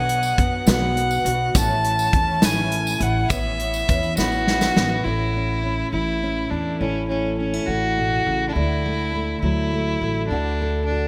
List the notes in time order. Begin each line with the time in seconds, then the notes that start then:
Already playing: B1 B2 F#3 B3 D4 F#4 F#5
0.09 closed hi-hat
0.23 tambourine
0.37 F#2 F#3 B3 D4 F#4, kick, closed hi-hat
0.66 B1 B2 F#3 B3 D4 F#4 F#5, snare, closed hi-hat, tambourine
0.97 closed hi-hat
1.11 tambourine
1.24 B1 B3 D4 F#4, closed hi-hat
1.54 A1 A2 E3 A3 C#4 E4 A5, kick, closed hi-hat, tambourine
1.84 closed hi-hat
1.99 tambourine
2.12 E2 E3 A3 C#4 E4, kick, closed hi-hat
2.42 A1 A2 E3 A3 C#4 E4 G#5, snare, closed hi-hat, tambourine
2.72 closed hi-hat
2.87 tambourine
2.99 A1 A3 C#4 E4 F#5, closed hi-hat
3.29 A1 A2 E3 B3 C#4 E4 E5, kick, closed hi-hat, tambourine
3.59 closed hi-hat
3.74 tambourine
3.87 E2 E3 B3 C#4 E4, kick, closed hi-hat, tambourine
4.03 tambourine
4.17 A1 A2 E3 B3 C#4 E4 F#4, snare, tambourine
4.32 tambourine
4.47 snare
4.61 snare, tambourine
4.75 A1 B3 C#4 E4, snare, tambourine
5.04 A1 A2 C#4 E4
5.36 C#4
5.65 C#4
5.92 A1 E3 E4
6.23 C#4
6.50 E2 D4 A4
6.80 A1 A2 C#4 E4
7.08 C#4 A4
7.38 C#4
7.54 E4
7.66 A1 A2 F#4
7.97 B2
8.26 A1 C#3
8.49 D4
8.53 D2 D3 E4
8.57 A3
8.86 A3
9.15 A3
9.40 D2 F#3 E4
9.74 A3
10.01 A1 A3
10.27 D2 D4
10.31 D3 F#4
10.62 A4
10.85 D4
10.92 F#4